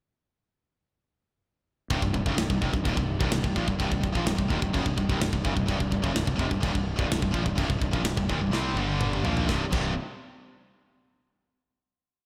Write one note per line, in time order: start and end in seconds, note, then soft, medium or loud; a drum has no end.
1.90 2.01 C1 medium
1.90 2.01 C2 medium
1.90 2.01 G2 loud
1.90 8.75 C3 medium
1.90 8.74 D#3 medium
1.90 9.47 G3 medium
1.90 5.65 D#4 medium
1.90 9.23 G4 medium
1.90 kick loud
1.90 china medium
2.02 2.13 C1 medium
2.02 2.12 C2 medium
2.02 2.12 G2 medium
2.02 kick medium
2.13 2.25 C1 medium
2.13 2.26 C2 medium
2.13 2.26 G2 medium
2.13 kick medium
2.26 2.37 F#1 loud
2.26 2.37 F#2 medium
2.26 2.37 C#3 loud
2.26 kick medium
2.38 2.49 C1 medium
2.38 2.49 C2 medium
2.38 2.49 G2 medium
2.38 snare loud
2.38 china medium
2.50 2.61 C1 medium
2.50 2.61 C2 medium
2.50 2.62 G2 medium
2.50 kick medium
2.61 2.72 F1 medium
2.61 2.72 F2 medium
2.61 2.72 C3 medium
2.61 kick medium
2.73 2.84 C1 medium
2.73 2.83 C2 medium
2.73 2.84 G2 medium
2.73 kick medium
2.84 2.96 D#1 loud
2.84 2.95 D#2 medium
2.84 2.96 A#2 loud
2.84 kick loud
2.84 china medium
2.96 3.18 C1 medium
2.96 3.15 C2 medium
2.96 3.16 G2 medium
2.96 kick medium
3.19 3.31 C1 loud
3.19 3.31 C2 medium
3.19 3.31 G2 loud
3.19 kick loud
3.32 3.43 C1 medium
3.32 3.44 C2 medium
3.32 3.44 G2 medium
3.32 snare loud
3.32 china medium
3.44 3.55 C1 medium
3.44 3.55 C2 medium
3.44 3.57 G2 medium
3.44 kick medium
3.56 3.67 A#1 medium
3.56 3.67 A#2 medium
3.56 3.67 F3 loud
3.56 kick medium
3.68 3.79 C1 medium
3.68 3.79 C2 medium
3.68 3.80 G2 medium
3.68 kick medium
3.80 3.90 C1 medium
3.80 3.91 C2 medium
3.80 3.91 G2 loud
3.80 kick loud
3.80 china medium
3.91 4.02 C1 medium
3.91 4.02 C2 medium
3.91 4.02 G2 medium
3.91 kick medium
4.03 4.14 C1 medium
4.03 4.15 C2 medium
4.03 4.15 G2 medium
4.03 kick medium
4.15 4.26 A#1 medium
4.15 4.26 A#2 medium
4.15 4.27 F3 loud
4.15 kick medium
4.26 4.38 C1 medium
4.26 4.37 C2 medium
4.26 4.37 G2 medium
4.26 snare loud
4.26 china medium
4.38 4.49 C1 medium
4.38 4.50 C2 medium
4.38 4.50 G2 medium
4.38 kick medium
4.50 4.61 D#1 loud
4.50 4.61 D#2 medium
4.50 4.61 A#2 loud
4.50 kick medium
4.61 4.73 C1 medium
4.61 4.73 C2 medium
4.61 4.73 G2 medium
4.61 kick medium
4.73 4.85 F#1 loud
4.73 4.85 F#2 loud
4.73 4.85 C#3 loud
4.73 kick loud
4.73 china medium
4.86 4.97 C1 medium
4.86 4.97 C2 medium
4.86 4.97 G2 medium
4.86 kick medium
4.98 5.08 C1 medium
4.98 5.09 C2 medium
4.98 5.10 G2 medium
4.98 kick medium
5.09 5.19 C1 loud
5.09 5.21 C2 medium
5.09 5.21 G2 loud
5.09 kick medium
5.19 5.31 C1 medium
5.19 5.31 C2 medium
5.19 5.32 G2 medium
5.19 snare loud
5.19 china medium
5.33 5.44 C1 medium
5.33 5.44 C2 medium
5.33 5.45 G2 medium
5.33 kick medium
5.45 5.56 F#1 loud
5.45 5.56 F#2 loud
5.45 5.56 C#3 loud
5.45 kick medium
5.56 5.68 C1 medium
5.56 5.68 C2 medium
5.56 5.68 G2 medium
5.56 kick medium
5.68 5.79 C1 loud
5.68 5.80 C2 loud
5.68 5.80 G2 loud
5.68 9.23 D4 medium
5.68 kick loud
5.68 china medium
5.80 5.91 C1 medium
5.80 5.92 C2 medium
5.80 5.93 G2 medium
5.80 kick medium
5.92 6.02 C1 medium
5.92 6.03 C2 medium
5.92 6.04 G2 medium
5.92 kick medium
6.03 6.14 F#1 loud
6.03 6.15 F#2 medium
6.03 6.15 C#3 loud
6.03 kick medium
6.16 6.27 C1 medium
6.16 6.26 C2 medium
6.16 6.27 G2 medium
6.16 snare loud
6.16 china medium
6.27 6.38 C1 medium
6.27 6.39 C2 medium
6.27 6.40 G2 medium
6.27 kick medium
6.36 6.50 F1 loud
6.36 6.51 F2 medium
6.36 6.48 C3 medium
6.36 kick medium
6.41 6.51 C3 loud
6.51 6.62 C1 medium
6.51 6.62 C2 medium
6.51 6.63 G2 medium
6.51 kick medium
6.62 6.74 D#1 loud
6.62 6.74 D#2 loud
6.62 6.74 A#2 loud
6.62 kick loud
6.62 china medium
6.75 6.97 C1 medium
6.75 6.94 C2 medium
6.75 6.94 G2 medium
6.75 kick medium
6.99 7.09 C1 loud
6.99 7.10 C2 medium
6.99 7.10 G2 medium
6.99 kick loud
7.10 7.21 C1 medium
7.10 7.21 C2 medium
7.10 7.21 G2 medium
7.10 snare loud
7.10 china medium
7.18 7.33 C1 medium
7.18 7.31 C2 medium
7.22 7.34 C2 medium
7.22 7.34 G2 medium
7.22 kick medium
7.31 7.45 A#1 medium
7.31 7.46 A#2 medium
7.31 7.44 F3 medium
7.31 kick medium
7.35 7.46 F3 loud
7.46 7.57 C1 medium
7.46 7.57 C2 medium
7.46 7.59 G2 medium
7.46 kick medium
7.58 7.69 C1 medium
7.58 7.69 C2 medium
7.58 7.70 G2 loud
7.58 kick loud
7.58 china medium
7.69 7.80 C1 medium
7.69 7.81 C2 medium
7.69 7.81 G2 medium
7.69 kick medium
7.81 7.92 C1 medium
7.81 7.93 C2 medium
7.81 7.94 G2 medium
7.81 kick medium
7.93 8.03 A#1 loud
7.93 8.05 A#2 medium
7.93 8.06 F3 medium
7.93 kick medium
8.03 8.16 C1 medium
8.03 8.17 C2 medium
8.03 8.17 G2 medium
8.03 snare loud
8.03 china medium
8.17 8.29 C1 medium
8.17 8.29 C2 medium
8.17 8.30 G2 medium
8.17 kick medium
8.29 8.38 D#1 loud
8.29 8.41 D#2 medium
8.29 8.41 A#2 medium
8.29 kick medium
8.39 8.48 C1 medium
8.39 8.54 C2 medium
8.39 8.52 G2 medium
8.49 8.73 C2 loud
8.49 8.77 C3 loud
8.53 8.77 G3 medium
8.53 8.77 C4 loud
8.53 snare medium
8.74 9.20 G1 medium
8.74 9.24 G2 loud
8.74 9.25 D3 medium
8.74 9.25 G3 loud
8.74 high tom medium
9.01 mid tom medium
9.13 mid tom medium
9.23 9.46 A#1 medium
9.23 9.48 A#2 medium
9.23 9.48 F3 medium
9.23 9.49 A#3 loud
9.23 floor tom loud
9.29 9.49 C3 medium
9.29 9.50 D#3 medium
9.29 9.49 D#4 medium
9.29 9.49 G4 medium
9.37 floor tom medium
9.48 9.63 C1 medium
9.48 9.63 C2 medium
9.48 9.64 G2 loud
9.48 9.64 C3 loud
9.48 9.73 C3 medium
9.48 9.73 G3 medium
9.48 9.73 D#4 medium
9.48 9.73 G4 medium
9.48 kick loud
9.48 snare medium
9.52 9.73 D#3 medium
9.72 9.95 C1 loud
9.72 9.93 C2 loud
9.72 9.93 G2 loud
9.72 9.93 C3 loud
9.72 kick loud
9.72 crash medium